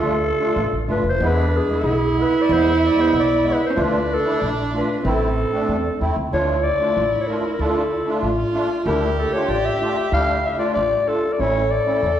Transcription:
Already playing: upright bass D2, accordion A3 D4 F4, clarinet A4
0.39 accordion A3 D4 F4
0.56 upright bass A1
0.72 upright bass A1
0.87 upright bass G#1, accordion A3 D4 F4, clarinet B4
1.04 upright bass F1
1.09 clarinet C5
1.20 upright bass E2, accordion G#3 B3 E4, viola D4
1.26 clarinet B4
1.57 clarinet G#4
1.68 accordion G#3 B3 E4
1.84 upright bass B1, viola E4
2.16 accordion G#3 B3 E4
2.22 clarinet B4
2.42 clarinet D5
2.48 upright bass E2, accordion G#3 B3 E4
2.53 clarinet C5
2.79 clarinet E5
2.86 clarinet D5
2.96 accordion G#3 B3 E4
3.01 clarinet C5
3.13 upright bass B1
3.19 clarinet D5
3.44 accordion G#3 B3 E4
3.49 clarinet B4
3.66 clarinet C5
3.71 viola C#4
3.75 upright bass D2, accordion A3 D4 F4, viola D4
3.80 clarinet B4
4.14 clarinet A4
4.25 accordion A3 D4 E4
4.42 upright bass A#1
4.73 accordion A3 D4 F4
4.78 clarinet B4
5.04 upright bass A1, accordion A3 C4 E4, viola C4
5.10 clarinet A4
5.53 accordion A3 C4 D4
5.69 upright bass E2
6.01 upright bass E2, accordion A3 C4 E4
6.16 upright bass D2
6.32 upright bass D2, accordion A3 D4 F4, viola E4, clarinet C#5
6.63 clarinet D5
6.80 accordion A3 D4 F4
6.97 upright bass A1
7.20 clarinet C#5
7.28 accordion A3 D4 F4, clarinet A#4
7.53 clarinet A#4
7.59 upright bass D2, accordion A3 D4 F4, clarinet A4
8.07 accordion A3 D4 F4
8.21 upright bass A1, viola F4
8.54 accordion A3 D4 F4
8.85 upright bass D2, accordion A3 D4 E4, viola G4, clarinet A#4
9.19 clarinet A4
9.33 accordion A3 D4 F4, clarinet C#5
9.48 upright bass A1, clarinet D5
9.65 clarinet E5
9.80 accordion A3 D4 F4
10.12 upright bass D2, accordion A3 D4 E4, clarinet F5
10.45 clarinet E5 F5
10.51 clarinet E5
10.58 accordion A3 D4 F4, clarinet D5
10.74 upright bass A1, clarinet D5
11.06 accordion A3 D4 F4, clarinet A4
11.33 clarinet D5
11.39 upright bass A1, accordion A3 C#4 E4, viola A4, clarinet C#5
11.71 clarinet D5
11.85 accordion A3 C#4 E4
12.03 upright bass E2

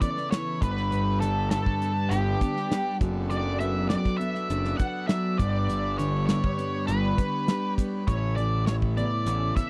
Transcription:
Already playing: transistor combo organ C#3 E4 A4 B4, clean electric guitar E3 C#4
0.01 clean electric guitar B3, lead electric guitar D5, kick, closed hi-hat
0.17 snare
0.31 clean electric guitar E3, lead electric guitar C#5, snare, closed hi-hat
0.61 picked electric bass G1, clean electric guitar G2, transistor combo organ B3 D4 G4, lead electric guitar B4, kick, closed hi-hat
0.77 snare
0.91 clean electric guitar G2, closed hi-hat
1.20 clean electric guitar D3, lead electric guitar A4, closed hi-hat
1.50 clean electric guitar G3, lead electric guitar A4, snare, closed hi-hat
1.66 kick
1.81 clean electric guitar B3, closed hi-hat
2.10 picked electric bass G1, clean electric guitar D4, lead electric guitar G4, closed hi-hat
2.41 clean electric guitar B3, kick, closed hi-hat
2.57 snare
2.71 clean electric guitar G3, snare, closed hi-hat
3.00 picked electric bass F#1, clean electric guitar F#3, transistor combo organ F#4 A4, kick, closed hi-hat
3.30 clean electric guitar F#3, lead electric guitar D5, closed hi-hat
3.60 clean electric guitar B3, lead electric guitar E5, closed hi-hat
3.89 clean electric guitar F#3, lead electric guitar D5, snare, closed hi-hat
4.05 kick, snare
4.18 clean electric guitar B3, lead electric guitar E5, closed hi-hat
4.35 snare
4.50 picked electric bass F#1, clean electric guitar D4, closed hi-hat
4.65 snare
4.77 clean electric guitar B3, lead electric guitar F#5, kick, closed hi-hat
5.07 clean electric guitar F#3, lead electric guitar E5, snare, closed hi-hat
5.38 picked electric bass G1, clean electric guitar G2, lead electric guitar D5, kick, closed hi-hat
5.42 transistor combo organ G4 B4
5.69 clean electric guitar G2, closed hi-hat
5.98 clean electric guitar D3, lead electric guitar C#5, closed hi-hat
6.27 clean electric guitar G3, lead electric guitar C#5, snare, closed hi-hat
6.44 kick
6.58 clean electric guitar B3, closed hi-hat
6.87 picked electric bass G1, clean electric guitar D4, lead electric guitar B4, closed hi-hat
7.18 clean electric guitar B3, kick, closed hi-hat
7.48 clean electric guitar G3, snare, closed hi-hat
7.78 clean electric guitar B3, kick, closed hi-hat
8.07 picked electric bass A1, clean electric guitar A2, transistor combo organ C#3 E4 A4, lead electric guitar C#5, kick, closed hi-hat
8.36 clean electric guitar E3, lead electric guitar D5, closed hi-hat
8.66 clean electric guitar E3, lead electric guitar C#5, snare, closed hi-hat
8.82 kick
8.97 clean electric guitar B3, lead electric guitar D5, closed hi-hat
9.26 picked electric bass A1, clean electric guitar C#4, closed hi-hat
9.56 clean electric guitar B3, lead electric guitar E5, kick, closed hi-hat

